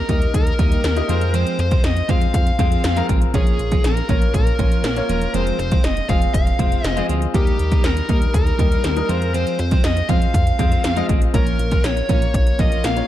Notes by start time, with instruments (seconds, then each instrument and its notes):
Already playing: grand piano A#3 D#4 G4 D#5, lead electric guitar A#4
0.08 analog synth bass D#2, clean electric guitar G3 A#3 D#4 G4, grand piano A#3 D#4 G4 D#5, kick, closed hi-hat
0.21 muted clean electric guitar stroke, closed hi-hat
0.34 analog synth bass D#2, lead electric guitar A#4, muted clean electric guitar stroke, kick, closed hi-hat
0.46 muted clean electric guitar stroke, closed hi-hat
0.58 analog synth bass D#2, clean electric guitar G3 A#3 D#4 G4, grand piano A#3 D#4 G4 D#5, kick, closed hi-hat
0.71 clean electric guitar G3 A#3 D#4 G4, closed hi-hat
0.84 analog synth bass D#2, muted clean electric guitar stroke, snare, closed hi-hat
0.96 grand piano A#3 D#4 G4 D#5, muted clean electric guitar stroke, closed hi-hat
1.08 analog synth bass F2, clean electric guitar F3 G#3 C4 F4, grand piano G#3 C4 F4 C5, closed hi-hat
1.21 muted clean electric guitar stroke, closed hi-hat
1.33 clean electric guitar F3 G#3 C4 F4, lead electric guitar C5, closed hi-hat
1.47 closed hi-hat
1.59 analog synth bass F2, lead electric guitar C5, muted clean electric guitar stroke, closed hi-hat
1.71 clean electric guitar F3 G#3 C4 F4, kick, closed hi-hat
1.84 analog synth bass F2, lead electric guitar D#5, snare, closed hi-hat
1.96 muted clean electric guitar stroke, closed hi-hat
2.08 analog synth bass F2, clean electric guitar F3 G#3 C4 F4, grand piano G#3 C4 F4 C5, lead electric guitar F5, kick, closed hi-hat
2.21 muted clean electric guitar stroke, closed hi-hat
2.34 analog synth bass F2, lead electric guitar F5, muted clean electric guitar stroke, kick, closed hi-hat
2.46 muted clean electric guitar stroke, closed hi-hat
2.59 analog synth bass F2, clean electric guitar F3 G#3 C4 F4, grand piano G#3 C4 F4 C5, kick, closed hi-hat
2.71 clean electric guitar F3 G#3 C4 F4, closed hi-hat
2.84 analog synth bass F2, snare, closed hi-hat
2.96 clean electric guitar F3 G#3 C4 F4, grand piano G#3 C4 F4 A#4, closed hi-hat
3.09 analog synth bass A1, clean electric guitar F3 G#3 C4 F4, kick, closed hi-hat
3.21 muted clean electric guitar stroke, closed hi-hat
3.34 analog synth bass A#1, clean electric guitar F3 A#3 C#4 F4, grand piano A#3 C#4 F4 C#5, lead electric guitar G#4, kick, closed hi-hat
3.47 closed hi-hat
3.59 analog synth bass A#1, muted clean electric guitar stroke, closed hi-hat
3.71 clean electric guitar F3 A#3 C#4 F4, kick, closed hi-hat
3.84 analog synth bass A#1, lead electric guitar A#4, muted clean electric guitar stroke, snare, closed hi-hat
3.97 muted clean electric guitar stroke, closed hi-hat
4.08 analog synth bass A#1, clean electric guitar F3 A#3 C#4 F4, grand piano A#3 C#4 F4 C#5, kick, closed hi-hat
4.22 muted clean electric guitar stroke, closed hi-hat
4.34 analog synth bass A#1, lead electric guitar A#4, muted clean electric guitar stroke, kick, closed hi-hat
4.47 muted clean electric guitar stroke, closed hi-hat
4.59 analog synth bass A#1, clean electric guitar F3 A#3 C#4 F4, grand piano A#3 C#4 F4 C#5, kick, closed hi-hat
4.71 clean electric guitar F3 A#3 C#4 F4, closed hi-hat
4.84 analog synth bass A#1, muted clean electric guitar stroke, snare, closed hi-hat
4.96 grand piano A#3 C#4 F4 C#5, muted clean electric guitar stroke, closed hi-hat
5.09 analog synth bass E1, clean electric guitar F3 A#3 C#4 F4, closed hi-hat
5.22 muted clean electric guitar stroke, closed hi-hat
5.34 analog synth bass F1, clean electric guitar F3 G#3 C4 F4, grand piano G#3 C4 F4 A#4, lead electric guitar C5, closed hi-hat
5.41 grand piano C5
5.47 closed hi-hat
5.59 analog synth bass F1, lead electric guitar C5, muted clean electric guitar stroke, closed hi-hat
5.71 clean electric guitar F3 G#3 C4 F4, kick, closed hi-hat
5.84 analog synth bass F1, lead electric guitar D#5, snare, closed hi-hat
5.97 muted clean electric guitar stroke, closed hi-hat
6.09 analog synth bass F1, clean electric guitar F3 G#3 C4 F4, grand piano G#3 C4 F4 G#4, lead electric guitar F5, kick, closed hi-hat
6.22 muted clean electric guitar stroke, closed hi-hat
6.34 analog synth bass F1, lead electric guitar F5, muted clean electric guitar stroke, kick, closed hi-hat
6.47 muted clean electric guitar stroke, closed hi-hat
6.59 analog synth bass F1, clean electric guitar F3 G#3 C4 F4, grand piano G#3 C4 F4 C5, kick, closed hi-hat
6.71 clean electric guitar F3 G#3 C4 F4, closed hi-hat
6.84 analog synth bass F1, lead electric guitar D#5, muted clean electric guitar stroke, snare, closed hi-hat
6.96 clean electric guitar F3 G#3 C4 F4, grand piano G#3 C4 F4 G#4, closed hi-hat
7.09 analog synth bass D2, clean electric guitar F3 G#3 C4 F4, closed hi-hat
7.21 muted clean electric guitar stroke, closed hi-hat
7.34 analog synth bass D#2, clean electric guitar G3 A#3 D#4 G4, grand piano G3 A#3 D#4 A#4, lead electric guitar G4, kick, closed hi-hat
7.47 closed hi-hat
7.59 analog synth bass D#2, muted clean electric guitar stroke, closed hi-hat
7.71 clean electric guitar G3 A#3 D#4 G4, kick, closed hi-hat
7.84 analog synth bass D#2, lead electric guitar A#4, muted clean electric guitar stroke, snare, closed hi-hat
7.96 muted clean electric guitar stroke, closed hi-hat
8.08 analog synth bass D#2, grand piano G3 A#3 D#4 A#4, clean electric guitar G3 A#3 D#4 G4, kick, closed hi-hat
8.21 muted clean electric guitar stroke, closed hi-hat
8.34 analog synth bass D#2, lead electric guitar A#4, muted clean electric guitar stroke, kick, closed hi-hat
8.46 muted clean electric guitar stroke, closed hi-hat
8.58 analog synth bass D#2, clean electric guitar G3 A#3 D#4 G4, grand piano G3 A#3 D#4 A#4, kick, closed hi-hat
8.71 clean electric guitar G3 A#3 D#4 G4, closed hi-hat
8.84 analog synth bass D#2, muted clean electric guitar stroke, snare, closed hi-hat
8.96 grand piano G3 A#3 D#4 A#4, muted clean electric guitar stroke, closed hi-hat
9.09 analog synth bass F2, clean electric guitar F3 G#3 C4 F4, grand piano G#3 C4 F4 C5, closed hi-hat
9.21 muted clean electric guitar stroke, closed hi-hat
9.34 clean electric guitar F3 G#3 C4 F4, lead electric guitar C5, closed hi-hat
9.47 closed hi-hat
9.59 analog synth bass F2, lead electric guitar C5, muted clean electric guitar stroke, closed hi-hat
9.71 clean electric guitar F3 G#3 C4 F4, kick, closed hi-hat
9.84 analog synth bass F2, lead electric guitar D#5, muted clean electric guitar stroke, snare, closed hi-hat
9.96 muted clean electric guitar stroke, closed hi-hat
10.09 analog synth bass F2, clean electric guitar F3 G#3 C4 F4, grand piano G#3 C4 F4 C5, lead electric guitar F5, kick, closed hi-hat
10.21 muted clean electric guitar stroke, closed hi-hat
10.34 analog synth bass F2, lead electric guitar F5, muted clean electric guitar stroke, kick, closed hi-hat
10.46 muted clean electric guitar stroke, closed hi-hat
10.59 analog synth bass F2, clean electric guitar F3 G#3 C4 F4, grand piano G#3 C4 F4 C5, kick, closed hi-hat
10.71 clean electric guitar F3 G#3 C4 F4, closed hi-hat
10.84 analog synth bass F2, muted clean electric guitar stroke, snare, closed hi-hat
10.96 clean electric guitar F3 G#3 C4 F4, grand piano G#3 C4 F4 D#5, closed hi-hat
11.09 analog synth bass A1, clean electric guitar F3 G#3 C4 F4, kick, closed hi-hat
11.21 muted clean electric guitar stroke, closed hi-hat
11.33 analog synth bass A#1, clean electric guitar F3 A#3 C#4 F4, grand piano A#3 C#4 F4 C#5, lead electric guitar A#4, kick, closed hi-hat
11.47 closed hi-hat
11.59 analog synth bass A#1, muted clean electric guitar stroke, closed hi-hat
11.71 clean electric guitar F3 A#3 C#4 F4, kick, closed hi-hat
11.84 analog synth bass A#1, lead electric guitar C#5, muted clean electric guitar stroke, snare, closed hi-hat
11.96 muted clean electric guitar stroke, closed hi-hat
12.09 analog synth bass A#1, clean electric guitar F3 A#3 C#4 F4, grand piano A#3 C#4 F4 C#5, kick, closed hi-hat
12.22 muted clean electric guitar stroke, closed hi-hat
12.34 analog synth bass A#1, lead electric guitar C#5, muted clean electric guitar stroke, kick, closed hi-hat
12.47 muted clean electric guitar stroke, closed hi-hat
12.59 analog synth bass A#1, clean electric guitar F3 A#3 C#4 F4, grand piano A#3 C#4 F4 C#5, lead electric guitar D#5, kick, closed hi-hat
12.71 clean electric guitar F3 A#3 C#4 F4, closed hi-hat
12.84 analog synth bass A#1, lead electric guitar F5, muted clean electric guitar stroke, snare, closed hi-hat
12.96 grand piano A#3 C#4 F4 C#5, muted clean electric guitar stroke, closed hi-hat